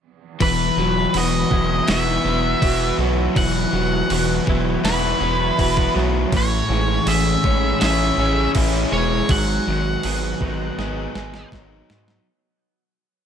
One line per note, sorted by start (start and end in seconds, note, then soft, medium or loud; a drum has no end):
0.40 0.70 E1 loud
0.40 2.25 E2 medium
0.40 1.13 E3 medium
0.40 2.63 E3 medium
0.40 1.17 B4 medium
0.40 kick loud
0.40 crash medium
0.77 1.07 E1 medium
0.77 1.52 F#3 medium
0.77 2.62 F#3 medium
1.14 1.45 E1 medium
1.14 3.01 E3 medium
1.14 1.89 B3 medium
1.14 1.89 F#4 medium
1.14 1.91 D#5 loud
1.14 crash medium
1.51 1.81 E1 loud
1.51 3.00 F#3 medium
1.51 2.23 B3 medium
1.51 2.27 E4 medium
1.51 kick medium
1.87 2.18 E1 medium
1.87 3.74 B3 medium
1.87 2.61 E4 medium
1.87 3.74 F#4 medium
1.87 snare loud
1.87 crash medium
1.91 2.97 E5 medium
2.24 2.55 E1 medium
2.24 4.10 B3 medium
2.24 4.15 E4 medium
2.24 4.52 E4 medium
2.62 2.92 E1 medium
2.62 3.38 E3 medium
2.62 4.83 E4 medium
2.62 4.49 F#4 medium
2.62 kick medium
2.62 crash medium
2.98 3.29 B1 medium
2.98 3.72 F#3 medium
2.98 3.74 F#3 medium
2.98 4.85 B3 medium
3.35 3.66 E1 loud
3.35 5.23 E2 medium
3.35 4.09 E3 medium
3.35 4.44 F#5 loud
3.35 kick loud
3.35 crash medium
3.39 5.23 E3 medium
3.73 4.03 E1 medium
3.73 5.58 F#3 medium
3.73 4.47 F#3 medium
4.10 4.40 E1 medium
4.10 5.95 E3 medium
4.10 4.83 B3 medium
4.10 4.85 F#4 medium
4.10 crash medium
4.46 4.77 E1 medium
4.46 5.96 F#3 medium
4.46 5.19 B3 medium
4.46 5.21 E4 medium
4.46 kick medium
4.84 5.14 E1 medium
4.84 6.33 B3 medium
4.84 5.56 E4 medium
4.84 6.33 F#4 medium
4.84 5.92 B4 loud
4.84 snare loud
4.84 crash medium
5.20 5.51 E1 medium
5.20 6.32 B3 medium
5.20 6.33 E4 medium
5.57 5.88 E1 medium
5.57 6.33 E3 medium
5.57 6.32 E4 medium
5.57 6.33 F#4 medium
5.57 kick medium
5.57 crash medium
5.77 kick medium
5.95 6.26 B1 medium
5.95 6.32 F#3 medium
5.95 6.33 F#3 medium
5.95 6.33 B3 medium
5.95 snare soft
6.32 6.62 A1 loud
6.32 8.18 A2 medium
6.32 8.19 A2 medium
6.32 8.19 E3 medium
6.32 kick loud
6.32 crash medium
6.37 7.11 C#5 medium
6.69 7.00 A1 medium
6.69 7.05 E3 medium
6.69 7.44 G#3 medium
7.06 7.37 A1 medium
7.06 8.92 E3 medium
7.06 7.81 C#4 medium
7.06 7.82 G#4 medium
7.06 7.79 E5 loud
7.06 crash medium
7.44 7.74 A1 medium
7.44 8.92 G#3 medium
7.44 8.17 C#4 medium
7.44 8.18 C#4 medium
7.44 kick medium
7.80 8.12 A1 medium
7.80 9.30 C#4 medium
7.80 8.54 E4 medium
7.80 9.34 G#4 medium
7.80 8.51 E5 loud
7.80 snare loud
7.80 crash medium
8.18 8.48 A1 medium
8.18 9.30 C#4 medium
8.18 9.72 G#4 medium
8.55 8.85 A1 medium
8.55 9.30 E3 medium
8.55 9.29 E4 medium
8.55 9.30 E4 medium
8.55 kick medium
8.55 crash medium
8.92 9.22 E1 medium
8.92 11.89 G#3 medium
8.92 9.68 G#3 medium
8.92 9.31 C#5 medium
9.29 9.60 G#1 medium
9.29 11.15 G#2 medium
9.29 11.16 F#3 medium
9.29 11.48 F#5 loud
9.29 kick loud
9.29 crash medium
9.67 9.97 G#1 medium
9.67 10.02 D#3 medium
9.67 10.41 F#3 medium
10.03 10.34 G#1 medium
10.03 11.89 D#3 medium
10.03 10.79 B3 medium
10.03 10.77 G#4 medium
10.03 crash medium
10.41 10.71 G#1 medium
10.41 11.89 F#3 medium
10.41 11.14 B3 medium
10.41 11.15 D#4 medium
10.41 kick medium
10.78 11.08 G#1 medium
10.78 12.27 B3 medium
10.78 11.52 D#4 medium
10.78 12.26 G#4 medium
10.78 snare medium
11.15 11.45 G#1 medium
11.15 12.26 B3 medium
11.15 12.27 D#4 medium
11.15 12.27 G#4 medium
11.15 snare medium
11.34 snare medium
11.52 11.82 G#1 medium
11.52 12.27 F#3 medium
11.52 12.26 D#4 medium
11.52 12.27 D#4 medium
11.52 kick medium
11.52 snare medium
11.89 12.20 G#2 medium
11.89 12.26 F#3 medium
11.89 12.27 B3 medium
11.89 snare loud
12.08 snare medium